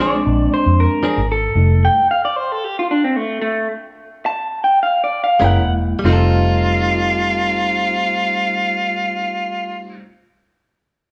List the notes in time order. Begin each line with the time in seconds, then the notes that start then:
0.00 F3 C4 D4 G#4 D5
0.14 G#3 C4 D4
0.26 A#1 G#3 C4 D4
0.54 C5
0.66 F2
0.80 A#4
1.03 F3 C4 D4 G#4
1.18 G#1
1.32 A4
1.55 F1 G3 A3 D#4
1.85 G5
2.11 F5
2.25 D5
2.36 C5
2.52 A4
2.64 G4
2.79 F4
2.91 D4
3.04 C4
3.16 A3
3.42 A3
4.26 A5
4.64 G5
4.83 F5
5.04 D5
5.24 F5
5.40 F#1 G#3 A#3 C#4 E4 A#4
5.44 F#5
5.57 E1
5.99 G3 A3
6.04 F1 A3 C4 D#4 F4
6.09 D#4 A4